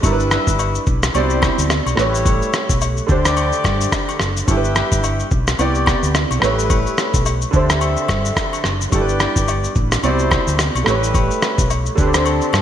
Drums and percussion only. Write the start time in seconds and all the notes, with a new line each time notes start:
0.03 kick, high agogo, shaker
0.20 shaker
0.31 cross-stick, shaker
0.47 kick, shaker
0.59 high agogo, low woodblock, shaker
0.75 shaker
0.86 kick, shaker
1.03 cross-stick, shaker
1.14 high agogo, shaker
1.30 shaker
1.42 kick, cross-stick, high agogo, shaker
1.59 shaker
1.70 cross-stick, low woodblock, shaker
1.87 high agogo, shaker
1.97 cross-stick, shaker
2.15 shaker
2.26 kick, high agogo, shaker
2.42 shaker
2.53 cross-stick, shaker
2.69 kick, shaker
2.81 high agogo, low woodblock, shaker
2.97 shaker
3.09 kick, shaker
3.25 cross-stick, shaker
3.37 high agogo, shaker
3.52 shaker
3.64 kick, cross-stick, high agogo, shaker
3.81 shaker
3.92 kick, cross-stick, low woodblock, shaker
4.09 high agogo, shaker
4.19 cross-stick, shaker
4.37 shaker
4.48 kick, high agogo, shaker
4.64 shaker
4.75 cross-stick, shaker
4.92 kick, shaker
5.03 high agogo, low woodblock, shaker
5.19 shaker
5.31 kick, shaker
5.47 cross-stick, shaker
5.59 high agogo, shaker
5.75 shaker
5.86 kick, cross-stick, high agogo, shaker
6.03 shaker
6.15 cross-stick, low woodblock, shaker
6.31 high agogo, shaker
6.42 cross-stick, shaker
6.59 shaker
6.70 kick, high agogo, shaker
6.86 shaker
6.97 cross-stick, shaker
7.14 kick, shaker
7.26 high agogo, low woodblock, shaker
7.42 shaker
7.53 kick, shaker
7.69 cross-stick, shaker
7.81 high agogo, shaker
7.97 shaker
8.08 kick, cross-stick, high agogo, shaker
8.25 shaker
8.37 kick, cross-stick, low woodblock, shaker
8.53 high agogo, shaker
8.64 cross-stick, shaker
8.81 shaker
8.92 kick, high agogo, shaker
9.09 shaker
9.20 cross-stick, shaker
9.36 kick, shaker
9.48 high agogo, low woodblock, shaker
9.64 shaker
9.75 kick, shaker
9.92 cross-stick, shaker
10.03 high agogo, shaker
10.19 shaker
10.31 kick, cross-stick, high agogo, shaker
10.47 shaker
10.59 cross-stick, low woodblock, shaker
10.75 high agogo, shaker
10.86 cross-stick, shaker
11.03 shaker
11.14 kick, high agogo, shaker
11.31 shaker
11.42 cross-stick, shaker
11.58 kick, shaker
11.70 high agogo, low woodblock, shaker
11.86 shaker
11.97 kick, shaker
12.14 cross-stick, shaker
12.26 high agogo, shaker
12.41 shaker
12.53 cross-stick, high agogo, shaker